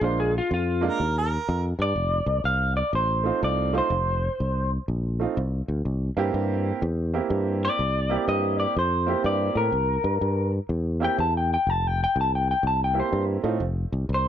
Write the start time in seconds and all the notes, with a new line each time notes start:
0.01 A#1 G#3 A#3 D4 F4 C5
0.20 G#4
0.38 F4
0.51 F2 F4
0.81 G#3 A#3 D4 F4
0.86 A#4
1.00 D#2
1.18 A#4
1.49 F2
1.79 G2 D5
1.96 F1
2.26 C2
2.44 C2 F5
2.77 D5
2.93 A1 C5
3.24 A3 C4 D#4 F4
3.43 C2 D5
3.73 A3 C4 D#4 F4
3.78 C5
3.90 F1
4.40 C2
4.88 A#1
5.20 A3 C4 D#4 F4
5.37 C2
5.68 D2
5.85 C2
6.17 G2 A#3 C4 E4 G4
6.34 G2
6.82 E2
7.13 A#3 C4 E4 G4
7.30 G2
7.65 D5
7.79 C2
8.10 A#3 C4 E4 G4
8.28 G2 D#5
8.60 D5
8.76 F2 C5
9.06 A#3 C4 E4 G4
9.24 G2 D5
9.55 A2 A#4
9.72 C2
10.04 G2
10.21 G2
10.69 E2
11.00 A#3 C4 E4 G4
11.05 G5
11.18 E2 A5
11.37 G5
11.54 G5
11.67 F1 A5
11.87 G5
12.04 G5
12.16 C2
12.21 A5
12.35 G5
12.51 G5
12.63 C2
12.67 A5
12.84 G5
12.94 A#3 C4 E4 G4
13.00 C5
13.13 G2
13.43 A2 A3 C4 D#4 F4
13.60 F1
13.92 C2
14.09 C2
14.14 C5